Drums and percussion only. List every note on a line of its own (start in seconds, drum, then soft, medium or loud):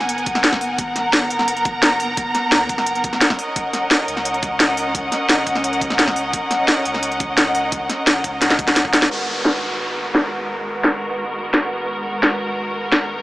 0.01 snare soft
0.09 closed hi-hat medium
0.18 closed hi-hat soft
0.26 kick loud
0.26 closed hi-hat medium
0.35 snare soft
0.44 snare loud
0.44 closed hi-hat medium
0.53 kick medium
0.53 snare medium
0.61 open hi-hat medium
0.78 kick loud
0.78 closed hi-hat medium
0.96 snare soft
0.96 closed hi-hat medium
1.13 snare loud
1.13 closed hi-hat medium
1.30 closed hi-hat medium
1.39 snare soft
1.48 closed hi-hat medium
1.57 closed hi-hat soft
1.65 kick loud
1.65 closed hi-hat medium
1.83 snare loud
1.83 closed hi-hat medium
2.00 open hi-hat medium
2.17 kick loud
2.17 closed hi-hat medium
2.35 snare soft
2.35 closed hi-hat medium
2.52 snare loud
2.52 closed hi-hat medium
2.69 kick medium
2.69 closed hi-hat medium
2.78 snare soft
2.86 closed hi-hat medium
2.95 closed hi-hat soft
3.04 kick loud
3.04 closed hi-hat medium
3.13 snare soft
3.21 snare loud
3.21 closed hi-hat medium
3.30 kick medium
3.30 snare medium
3.39 open hi-hat medium
3.56 kick loud
3.56 closed hi-hat medium
3.73 snare soft
3.73 closed hi-hat medium
3.91 snare loud
3.91 closed hi-hat medium
4.08 closed hi-hat medium
4.17 snare soft
4.25 closed hi-hat medium
4.34 closed hi-hat soft
4.43 kick loud
4.43 closed hi-hat medium
4.60 snare loud
4.60 closed hi-hat medium
4.77 open hi-hat medium
4.95 kick loud
4.95 closed hi-hat medium
5.12 snare soft
5.12 closed hi-hat medium
5.29 snare loud
5.29 closed hi-hat medium
5.47 kick medium
5.47 closed hi-hat medium
5.55 snare soft
5.64 closed hi-hat medium
5.73 closed hi-hat soft
5.81 kick loud
5.81 closed hi-hat medium
5.90 snare soft
5.99 snare loud
5.99 closed hi-hat medium
6.08 kick medium
6.08 snare medium
6.16 open hi-hat medium
6.33 kick loud
6.33 closed hi-hat loud
6.51 snare soft
6.51 closed hi-hat medium
6.68 snare loud
6.68 closed hi-hat medium
6.85 closed hi-hat medium
6.94 snare soft
7.03 closed hi-hat medium
7.12 closed hi-hat soft
7.20 kick loud
7.20 closed hi-hat medium
7.37 snare loud
7.37 closed hi-hat medium
7.55 open hi-hat medium
7.72 kick loud
7.72 closed hi-hat loud
7.90 snare soft
7.90 closed hi-hat medium
8.07 snare loud
8.07 closed hi-hat loud
8.24 kick medium
8.24 closed hi-hat medium
8.42 snare medium
8.42 closed hi-hat loud
8.50 snare medium
8.50 closed hi-hat soft
8.59 kick loud
8.59 closed hi-hat medium
8.68 snare medium
8.68 closed hi-hat soft
8.76 snare medium
8.76 closed hi-hat medium
8.85 kick medium
8.93 snare loud
8.93 open hi-hat medium
9.02 snare medium
9.45 snare loud
10.15 snare loud
10.84 snare loud
11.54 snare loud
12.23 snare loud
12.92 snare loud